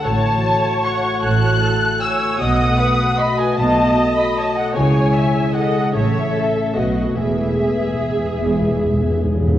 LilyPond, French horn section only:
\new Staff \with { instrumentName = "French horn section" } { \time 3/4 \key e \major \tempo 4 = 150 << { fis'2.~ | fis'2. | fis'2.~ | fis'2. |
e'2. | cis'2 b4 | b2.~ | b2~ b8 r8 | } \\ { a2.~ | a2. | a2.~ | a2. |
gis2. | a2.~ | a2 gis4~ | gis2~ gis8 r8 | } >> }